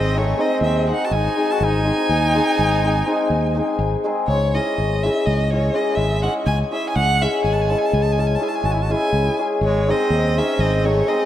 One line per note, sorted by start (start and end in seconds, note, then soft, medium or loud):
0.00 0.32 G#1 loud
0.00 0.13 G#3 medium
0.00 0.20 C4 medium
0.00 0.19 D#5 medium
0.14 0.36 G#3 medium
0.14 0.34 C4 soft
0.14 0.34 D#4 soft
0.14 0.34 G#4 medium
0.14 0.42 C#5 medium
0.19 0.44 A3 medium
0.38 0.85 G#3 medium
0.38 0.57 C4 medium
0.38 0.57 D#4 medium
0.38 0.57 G#4 medium
0.38 0.62 D#5 medium
0.43 0.64 C4 medium
0.61 0.91 D#2 medium
0.61 0.87 E5 medium
0.65 0.88 C4 medium
0.86 1.35 G#3 medium
0.86 1.06 C4 medium
0.86 1.06 D#4 soft
0.86 1.06 G#4 medium
0.90 1.07 D#4 medium
0.90 1.06 F#5 medium
1.04 1.17 F#4 medium
1.04 1.14 A5 medium
1.11 1.27 G#1 medium
1.11 1.54 D#4 medium
1.11 1.52 G#5 medium
1.36 1.66 G#3 medium
1.36 1.55 C4 soft
1.36 1.56 D#4 medium
1.36 1.56 G#4 medium
1.51 1.66 F#4 medium
1.51 1.65 A5 medium
1.61 1.90 G#1 medium
1.61 3.82 D#4 loud
1.61 3.81 G#5 loud
1.84 2.33 G#3 medium
1.84 2.04 C4 medium
1.84 2.05 D#4 medium
1.84 2.05 G#4 medium
2.09 2.39 D#2 medium
2.34 2.82 G#3 medium
2.34 2.54 C4 medium
2.34 2.54 D#4 medium
2.34 2.55 G#4 medium
2.59 3.02 G#1 medium
2.83 3.05 G#3 medium
2.83 3.02 C4 medium
2.83 3.02 D#4 medium
2.83 3.03 G#4 medium
3.06 3.54 G#3 medium
3.06 3.25 C4 medium
3.06 3.26 D#4 medium
3.06 3.26 G#4 medium
3.30 3.60 D#2 medium
3.55 4.03 G#3 medium
3.55 3.74 C4 medium
3.55 3.75 D#4 medium
3.55 3.75 G#4 medium
3.79 3.95 G#1 medium
4.04 4.34 G#3 medium
4.04 4.24 C4 medium
4.04 4.24 D#4 medium
4.04 4.24 G#4 medium
4.27 4.58 C#2 medium
4.27 4.56 C#5 loud
4.54 5.03 G#3 medium
4.54 4.73 C#4 medium
4.54 4.73 E4 medium
4.54 4.74 G#4 medium
4.54 5.05 D#5 medium
4.78 5.08 G#1 medium
5.04 5.50 G#3 medium
5.04 5.23 C#4 medium
5.04 5.23 E4 medium
5.04 5.23 G#4 medium
5.04 5.27 E5 medium
5.26 5.69 C#2 medium
5.26 5.52 D#5 medium
5.50 5.73 G#3 soft
5.50 5.70 C#4 soft
5.50 5.71 E4 soft
5.50 5.71 G#4 medium
5.50 5.76 C#5 medium
5.74 6.21 G#3 medium
5.74 5.93 C#4 medium
5.74 5.93 E4 medium
5.74 5.94 G#4 medium
5.74 5.97 D#5 medium
5.95 6.27 G#1 medium
5.95 6.22 E5 medium
6.23 6.70 G#3 medium
6.23 6.42 C#4 medium
6.23 6.42 E4 medium
6.23 6.43 G#4 medium
6.23 6.33 F#5 medium
6.46 6.62 C#2 loud
6.46 6.58 G#5 medium
6.71 7.20 G#3 medium
6.71 6.91 C#4 soft
6.71 6.91 E4 medium
6.71 6.91 G#4 medium
6.71 6.88 E5 medium
6.89 6.97 G#5 medium
6.95 7.25 C#2 medium
6.95 7.24 F#5 loud
7.21 7.69 G#3 medium
7.21 7.40 C#4 medium
7.21 7.40 E4 soft
7.21 7.41 G#4 medium
7.21 7.44 E5 medium
7.44 7.74 G#1 medium
7.44 7.54 G#5 medium
7.53 7.63 A5 medium
7.61 7.71 G#5 medium
7.70 8.17 G#3 medium
7.70 7.89 C#4 soft
7.70 7.90 E4 medium
7.70 7.90 G#4 medium
7.70 7.80 A5 medium
7.78 7.87 G#5 medium
7.86 7.95 A5 medium
7.93 8.36 C#2 loud
7.93 8.04 G#5 medium
8.02 8.14 A5 medium
8.12 8.21 G#5 medium
8.18 8.38 G#3 medium
8.18 8.36 C#4 medium
8.18 8.37 E4 soft
8.18 8.37 G#4 medium
8.18 8.28 A5 medium
8.27 8.37 G#5 medium
8.35 8.44 A5 medium
8.40 8.88 G#3 medium
8.40 8.59 C#4 medium
8.40 8.59 E4 medium
8.40 8.60 G#4 medium
8.40 8.50 G#5 medium
8.48 8.57 A5 medium
8.55 8.66 G#5 medium
8.64 8.93 G#1 medium
8.64 8.76 F#4 medium
8.64 8.73 A5 medium
8.72 8.84 E4 medium
8.72 8.83 G#5 medium
8.82 8.94 F#4 medium
8.82 8.92 A5 medium
8.89 9.37 G#3 medium
8.89 9.08 C#4 medium
8.89 9.08 E4 medium
8.89 9.40 E4 medium
8.89 9.09 G#4 medium
8.89 9.40 G#5 loud
9.13 9.28 C#2 medium
9.38 9.67 G#3 medium
9.38 9.57 C#4 medium
9.38 9.57 E4 medium
9.38 9.58 G#4 medium
9.61 9.91 G#1 medium
9.61 9.92 G#3 medium
9.61 9.92 C#5 medium
9.87 10.34 G#3 medium
9.87 10.06 C4 medium
9.87 10.40 C4 medium
9.87 10.07 D#4 medium
9.87 10.07 G#4 medium
9.87 10.40 D#5 medium
10.10 10.40 D#2 medium
10.36 10.82 G#3 medium
10.36 10.55 C4 medium
10.36 10.65 C#4 medium
10.36 10.55 D#4 medium
10.36 10.56 G#4 medium
10.36 10.61 E5 medium
10.59 11.01 G#1 loud
10.59 10.86 D#5 medium
10.63 10.90 C4 medium
10.83 11.05 G#3 soft
10.83 11.02 C4 medium
10.83 11.03 D#4 soft
10.83 11.03 G#4 medium
10.83 11.10 C#5 medium
10.88 11.10 A3 medium
11.06 11.25 G#3 medium
11.06 11.25 C4 medium
11.06 11.25 D#4 medium
11.06 11.25 G#4 medium
11.06 11.25 D#5 medium